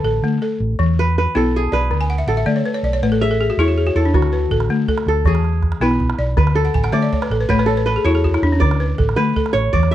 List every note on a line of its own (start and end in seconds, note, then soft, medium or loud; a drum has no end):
0.00 0.19 A1 medium
0.00 0.20 F#4 medium
0.00 0.98 A4 medium
0.00 0.41 B4 medium
0.00 0.72 B4 loud
0.04 0.41 A4 medium
0.22 0.38 D3 medium
0.22 0.60 A3 medium
0.42 0.98 A4 medium
0.60 0.76 A1 medium
0.79 1.25 E2 medium
0.79 1.16 E3 medium
0.99 1.18 B4 loud
1.18 1.73 B4 medium
1.35 1.66 B1 medium
1.35 1.72 B3 medium
1.35 1.91 E4 medium
1.35 1.62 A4 medium
1.56 2.34 G#4 medium
1.72 1.88 B1 medium
1.72 2.96 B4 medium
1.72 2.09 D5 medium
1.90 2.21 D2 medium
1.90 2.28 D3 medium
2.01 2.18 G#5 medium
2.10 2.27 F#5 medium
2.18 2.36 E5 medium
2.27 2.43 A1 medium
2.27 3.60 A4 medium
2.27 2.45 F#5 medium
2.37 2.54 E5 medium
2.46 2.62 D3 medium
2.46 2.83 A3 medium
2.46 2.63 D5 medium
2.56 2.73 C#5 medium
2.66 2.83 B4 medium
2.74 2.92 C#5 medium
2.83 2.99 B1 medium
2.83 3.01 D5 medium
2.93 3.10 C#5 medium
3.02 3.49 A1 medium
3.02 3.40 A3 medium
3.02 3.20 B4 medium
3.12 3.29 A4 medium
3.21 3.38 G#4 medium
3.21 4.25 E5 loud
3.31 3.48 A4 medium
3.41 3.57 G#4 medium
3.50 3.67 F#4 medium
3.57 3.89 E2 medium
3.57 3.95 E4 medium
3.57 3.76 G#4 medium
3.57 4.74 C#5 medium
3.68 3.85 F#4 medium
3.78 3.95 G#4 medium
3.87 4.04 F#4 medium
3.95 4.11 E2 medium
3.95 4.13 E4 medium
3.95 5.08 A4 medium
4.05 4.22 D4 medium
4.14 4.45 D2 loud
4.14 4.51 D3 medium
4.14 5.60 F#4 medium
4.14 calabash thump medium
4.22 calabash click soft
4.33 4.89 B4 medium
4.51 4.66 A1 medium
4.51 4.87 A4 medium
4.51 calabash thump medium
4.60 calabash click soft
4.69 4.85 D3 medium
4.69 5.07 A3 medium
4.88 5.44 A4 medium
4.88 calabash thump medium
4.98 calabash click medium
5.06 5.22 D2 medium
5.06 5.33 A4 medium
5.06 calabash click soft
5.24 5.71 E2 medium
5.24 5.63 E3 medium
5.24 6.61 G#4 medium
5.24 calabash thump medium
5.35 calabash click soft
5.44 calabash click soft
5.62 calabash thump medium
5.62 calabash click soft
5.72 calabash click medium
5.80 6.12 B1 medium
5.80 6.19 B3 medium
5.80 6.37 E4 medium
5.80 6.37 B4 medium
5.91 calabash click soft
6.00 calabash thump medium
6.10 calabash click medium
6.18 6.34 B1 medium
6.18 6.56 D5 medium
6.37 6.68 D2 loud
6.37 6.74 D3 medium
6.37 7.48 B4 medium
6.37 calabash thump medium
6.47 calabash click medium
6.55 7.66 A4 medium
6.65 6.82 F#5 medium
6.74 6.90 A1 medium
6.74 6.92 G#5 medium
6.74 calabash thump medium
6.84 7.01 F#5 medium
6.84 calabash click medium
6.92 7.08 D3 medium
6.92 7.30 A3 medium
6.92 8.04 D5 medium
6.92 7.10 E5 medium
7.02 7.20 D5 medium
7.13 7.30 C#5 medium
7.13 calabash thump medium
7.22 7.39 B4 medium
7.22 calabash click medium
7.30 7.46 A1 medium
7.30 7.48 A4 medium
7.30 calabash click soft
7.41 7.57 B4 medium
7.49 7.96 A1 medium
7.49 7.87 A3 medium
7.49 7.85 B4 medium
7.49 7.67 C#5 medium
7.49 calabash thump medium
7.59 7.76 B4 medium
7.59 calabash click soft
7.66 8.98 A4 medium
7.66 7.85 C#5 medium
7.77 7.94 B4 medium
7.86 8.04 A4 medium
7.86 9.09 B4 medium
7.86 calabash click soft
7.96 8.13 G#4 medium
8.04 8.36 E2 medium
8.04 8.33 E4 medium
8.04 8.22 F#4 medium
8.04 8.66 C#5 medium
8.15 8.32 G#4 medium
8.15 calabash click soft
8.24 8.41 F#4 medium
8.24 calabash thump medium
8.34 8.51 E4 medium
8.34 calabash click soft
8.42 8.58 E2 medium
8.42 8.60 D4 medium
8.52 8.69 C#4 medium
8.60 8.92 D2 loud
8.60 8.98 D3 medium
8.60 9.59 D5 loud
8.60 calabash thump medium
8.71 calabash click medium
8.80 9.36 B4 medium
8.98 9.14 A1 medium
8.98 9.35 A4 medium
8.98 calabash thump medium
9.09 calabash click soft
9.16 9.32 D3 medium
9.16 9.54 A3 medium
9.16 9.95 B4 medium
9.36 9.92 A4 medium
9.36 calabash thump medium
9.46 calabash click soft
9.53 9.70 A1 medium
9.53 9.79 C#5 loud
9.53 calabash click soft
9.73 9.95 E2 medium
9.73 9.95 E3 medium
9.73 9.95 D5 loud
9.73 calabash thump medium
9.83 calabash click soft
9.91 9.95 E5 loud